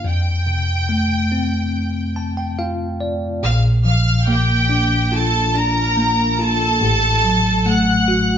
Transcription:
0.04 tine electric piano F2, violin section G5
0.47 tine electric piano C3
0.89 tine electric piano A3
1.32 tine electric piano C4
2.16 tine electric piano A5
2.37 tine electric piano G5
2.59 tine electric piano F4 F5
3.01 tine electric piano D5
3.43 tine electric piano A#1 A#2, violin section F5 F6
3.85 tine electric piano F3, violin section F5 F6
4.27 tine electric piano A#3, violin section G4 G5
4.69 tine electric piano D4
5.12 tine electric piano F4, violin section A4 A5
5.55 tine electric piano D4, violin section A#4 A#5
5.97 tine electric piano A#3
6.39 tine electric piano F4, violin section A4 A5
6.81 tine electric piano A1 A2
7.24 tine electric piano F#3
7.66 tine electric piano A3, violin section F#5 F#6
8.08 tine electric piano F#4

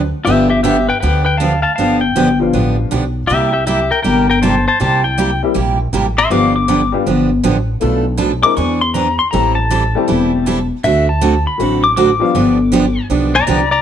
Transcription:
Already playing: upright bass D2
0.25 upright bass G1, steel-string acoustic guitar D3 F3 B3 D4 G4, upright piano F3 G3 B3 D4 F4, pedal steel guitar G4 E5
0.50 pedal steel guitar G4 E5
0.63 steel-string acoustic guitar D3 F3 B3 D4 G4, pedal steel guitar G4 E5
0.89 pedal steel guitar B4 G5
1.00 upright bass D2, steel-string acoustic guitar D3 F3 B3 D4 G4, pedal steel guitar B4 G5
1.25 pedal steel guitar B4 G5
1.37 steel-string acoustic guitar D3 F3 B3 D4 G4, pedal steel guitar F5 A5
1.62 pedal steel guitar F5 A5
1.76 upright bass G1, steel-string acoustic guitar D3 F3 B3 D4 G4, pedal steel guitar F5 A5
2.01 pedal steel guitar G5
2.15 upright bass G1, steel-string acoustic guitar D3 F3 B3 D4 G4
2.40 upright piano F3 G3 B3 D4 F4
2.53 upright bass A1, steel-string acoustic guitar D3 F3 B3 D4 G4
2.91 upright bass B1, steel-string acoustic guitar D3 F3 B3 D4 G4
3.27 upright bass C2, steel-string acoustic guitar C3 G3 A#3 E4 G4, pedal steel guitar G4 E5
3.53 pedal steel guitar G4 E5
3.67 steel-string acoustic guitar C3 G3 A#3 E4 G4, pedal steel guitar G4 E5
3.91 pedal steel guitar A#4 G5
4.03 upright bass G1, steel-string acoustic guitar C3 G3 A#3 E4 G4, pedal steel guitar A#4 G5
4.30 pedal steel guitar A#4 G5
4.42 steel-string acoustic guitar C3 G3 A#3 E4 G4, pedal steel guitar C5 A5
4.68 pedal steel guitar C5 A5
4.80 upright bass C2, steel-string acoustic guitar C3 G3 A#3 E4 G4, pedal steel guitar C5 A5
5.04 pedal steel guitar G5
5.18 steel-string acoustic guitar C3 G3 A#3 E4 G4
5.43 upright piano G3 A#3 C4 E4 G4
5.54 upright bass A#1, steel-string acoustic guitar C3 G3 A#3 E4 G4
5.93 upright bass A1, steel-string acoustic guitar C3 G3 A#3 E4 G4
6.18 pedal steel guitar E5 C6
6.30 upright bass G1, steel-string acoustic guitar D3 F3 B3 D4 G4, upright piano G3 B3 D4 F4 G4, pedal steel guitar D6
6.56 pedal steel guitar D6
6.68 steel-string acoustic guitar D3 F3 B3 D4 G4
6.92 upright piano G3 B3 D4 F4 G4
7.06 upright bass G1, steel-string acoustic guitar D3 F3 B3 D4 G4
7.43 upright bass A1, steel-string acoustic guitar D3 F3 B3 D4 G4
7.80 upright bass B1, steel-string acoustic guitar B2 F3 A3 D4 A4, upright piano A3 B3 D4 F4 A4
8.17 steel-string acoustic guitar B2 F3 A3 D4 A4
8.42 upright piano G#3 C4 D4 E4 A#4, pedal steel guitar D6
8.57 upright bass E2, steel-string acoustic guitar E3 C4 D4 G#4, pedal steel guitar C#6
8.81 pedal steel guitar C6
8.94 steel-string acoustic guitar E3 C4 D4 G#4, pedal steel guitar A#5
9.19 pedal steel guitar C6
9.31 upright bass A1, steel-string acoustic guitar E3 G3 C4 E4 A4, upright piano G3 A3 C4 E4 G4, pedal steel guitar A#5
9.55 pedal steel guitar A5
9.70 steel-string acoustic guitar E3 G3 C4 E4 A4
9.95 upright piano G3 A3 C4 E4 G4
10.08 upright bass E1, steel-string acoustic guitar E3 G3 C4 E4 A4
10.46 steel-string acoustic guitar E3 G3 C4 E4 A4
10.84 upright bass D2, steel-string acoustic guitar D3 A3 C4 F#4 A4, pedal steel guitar E5
11.09 pedal steel guitar A5
11.21 steel-string acoustic guitar D3 A3 C4 F#4 A4
11.47 pedal steel guitar B5
11.58 upright bass A1, steel-string acoustic guitar D3 A3 C4 F#4 A4, upright piano F#3 A3 C4 D4 F#4
11.84 pedal steel guitar D6
11.96 steel-string acoustic guitar D3 A3 C4 F#4 A4, pedal steel guitar D6
12.20 upright piano F3 G3 B3 D4 F4
12.35 upright bass G1, steel-string acoustic guitar D3 F3 B3 D4 G4
12.72 steel-string acoustic guitar D3 F3 B3 D4 G4
13.10 upright bass B1, steel-string acoustic guitar D3 F3 B3 D4 G4
13.35 pedal steel guitar D5 A#5
13.47 upright bass C2, steel-string acoustic guitar D3 F3 B3 D4 G4, pedal steel guitar A#5
13.71 pedal steel guitar D5 A#5

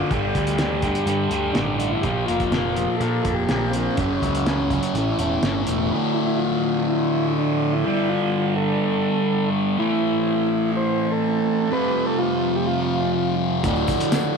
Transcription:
Already playing: distorted electric guitar A2 D3, transistor combo organ F4
0.11 picked electric bass G1, distorted electric guitar G2 D3 G3, transistor combo organ G4, kick, closed hi-hat
0.35 picked electric bass D2, distorted electric guitar D3 G3, kick, closed hi-hat
0.47 closed hi-hat
0.58 distorted electric guitar G2 D3 G3, snare, closed hi-hat
0.82 distorted electric guitar G2 D3 G3, kick, closed hi-hat
0.95 closed hi-hat
1.06 picked electric bass G2, distorted electric guitar G2 D3 G3, closed hi-hat
1.30 picked electric bass D2, distorted electric guitar D3 G3, closed hi-hat
1.53 picked electric bass A1, distorted electric guitar G2 D3, transistor combo organ D4, snare, closed hi-hat
1.57 distorted electric guitar G3
1.79 distorted electric guitar D3 G3, closed hi-hat
1.90 transistor combo organ E4
2.02 picked electric bass A#1, distorted electric guitar A#2, transistor combo organ G4, kick, closed hi-hat
2.06 distorted electric guitar F3 A#3
2.26 picked electric bass F1, distorted electric guitar A#3, transistor combo organ F4, closed hi-hat
2.30 distorted electric guitar F3
2.40 kick, closed hi-hat
2.52 distorted electric guitar A#2 F3 A#3, snare, closed hi-hat
2.76 distorted electric guitar A#2 F3 A#3, closed hi-hat
2.96 picked electric bass A#2, transistor combo organ A4
3.01 distorted electric guitar A#2 F3 A#3, closed hi-hat
3.25 picked electric bass F1, distorted electric guitar F3 A#3, kick, closed hi-hat
3.34 transistor combo organ G4
3.49 picked electric bass A#1, distorted electric guitar A#2 F3 A#3, snare, closed hi-hat
3.71 distorted electric guitar A#3, transistor combo organ C4, closed hi-hat
3.76 distorted electric guitar F3
3.95 picked electric bass F#1, distorted electric guitar F#2, transistor combo organ C#4, kick, closed hi-hat
4.00 distorted electric guitar C#3 F#3
4.22 picked electric bass C#2, distorted electric guitar C#3 F#3, kick, closed hi-hat
4.35 closed hi-hat
4.46 distorted electric guitar F#2 C#3 F#3, snare, closed hi-hat
4.70 distorted electric guitar F#2 C#3 F#3, kick, closed hi-hat
4.83 closed hi-hat
4.94 picked electric bass A1, distorted electric guitar A2 E3, closed hi-hat
4.99 distorted electric guitar A3
5.18 picked electric bass E1, distorted electric guitar A3, closed hi-hat
5.22 distorted electric guitar E3
5.43 picked electric bass G1, distorted electric guitar A2 E3 A3, snare, closed hi-hat
5.67 picked electric bass E1, distorted electric guitar E3 A3, closed hi-hat
5.91 distorted electric guitar D2 A2 D3, string machine F3 D4 E5
6.14 transistor combo organ E4
6.27 transistor combo organ E4
6.37 transistor combo organ F4
6.88 transistor combo organ E4
7.39 transistor combo organ D4
7.73 transistor combo organ E4
7.85 distorted electric guitar G2 D3 G3, string machine G3 B3
8.09 transistor combo organ F4
8.57 transistor combo organ A4
9.78 distorted electric guitar A2 E3 A3, string machine A3 C4 E4, transistor combo organ E4
10.77 transistor combo organ C5
11.12 transistor combo organ A4
11.71 distorted electric guitar F2 C3 F3, string machine G3 F4, transistor combo organ B4
12.06 transistor combo organ A4
12.18 transistor combo organ F4
12.56 transistor combo organ G4
12.66 transistor combo organ F4
13.64 picked electric bass D1, distorted electric guitar D2 A2 D3, string machine F3 D4 E4, kick, closed hi-hat, tambourine
13.76 tambourine
13.87 kick, closed hi-hat, tambourine
14.00 closed hi-hat
14.12 snare, closed hi-hat, tambourine

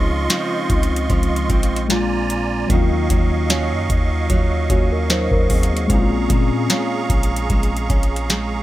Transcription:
Already playing: 808-style bass C#2, steel-string acoustic guitar C#3 F3 F4, synth keys G#3 C4 D#4 F4, accordion F4 D#5 C6 C#6
0.30 steel-string acoustic guitar F3 C4 D#4, snare, closed hi-hat
0.70 808-style bass C#2, kick, closed hi-hat
0.83 closed hi-hat
0.96 closed hi-hat
1.10 808-style bass C#2, steel-string acoustic guitar F3, kick, closed hi-hat
1.23 closed hi-hat
1.36 closed hi-hat
1.50 808-style bass A#1, steel-string acoustic guitar C4, kick, closed hi-hat
1.63 closed hi-hat
1.76 closed hi-hat
1.88 steel-string acoustic guitar A#2, synth keys G#3 C4 D4 F4, accordion F4 D5 G#5 A#5, snare, closed hi-hat
2.30 closed hi-hat
2.67 808-style bass D#2, steel-string acoustic guitar D#3, synth keys F#3 A#3, accordion F#3 D#5 F5 C#6, kick, closed hi-hat
2.71 synth keys C#4 F4
3.10 808-style bass D#2, steel-string acoustic guitar F#3, kick, closed hi-hat
3.50 steel-string acoustic guitar F#3 C#4 F4, snare, closed hi-hat
3.71 808-style bass F#2
3.90 808-style bass D#2, kick, closed hi-hat
4.30 808-style bass D#2, steel-string acoustic guitar F#3, kick, closed hi-hat
4.70 808-style bass D#2, synth keys A#3 F#4, steel-string acoustic guitar C#4, kick, closed hi-hat
4.92 synth keys C#4 A#4
5.09 steel-string acoustic guitar F#3, synth keys D#4 C5, snare, closed hi-hat
5.31 808-style bass D#2, synth keys C#4 A#4, kick
5.50 synth keys C4 G#4, kick, closed hi-hat, open hi-hat
5.63 closed hi-hat
5.72 synth keys A#3 F#4
5.77 closed hi-hat
5.87 808-style bass A#1, steel-string acoustic guitar A#2, synth keys G#3 C4, accordion G#4 A#5, kick, closed hi-hat
5.92 synth keys C#4 E4
6.00 synth keys F4
6.30 808-style bass A#2, steel-string acoustic guitar G#3, kick, closed hi-hat
6.70 steel-string acoustic guitar G#3 C#4 F4, snare, closed hi-hat
7.10 808-style bass A#1, kick, closed hi-hat
7.23 closed hi-hat
7.36 closed hi-hat
7.50 808-style bass A#1, steel-string acoustic guitar G#3, kick, closed hi-hat
7.63 closed hi-hat
7.77 closed hi-hat
7.89 808-style bass A#1, steel-string acoustic guitar C#4, kick, closed hi-hat
8.03 closed hi-hat
8.16 closed hi-hat
8.30 steel-string acoustic guitar G#3, snare, closed hi-hat

